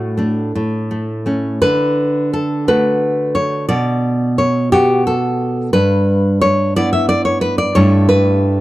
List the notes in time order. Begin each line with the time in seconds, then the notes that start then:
Already playing: A2 A3 F#4
0.17 A3 D4
0.55 A2
0.91 A3
1.26 A3 C#4
1.62 D3 B4
2.33 A4
2.68 A3 F#4 B4
3.35 C#5
3.69 B2 D5
4.38 C#5
4.72 B3 F#4 G4
5.07 A4
5.73 G2 B4
6.41 C#5
6.76 B3 E4 D5
6.93 E5
7.09 D5
7.25 C#5
7.41 B4
7.58 D5
7.75 G2 A3 E4 C#5
8.09 B4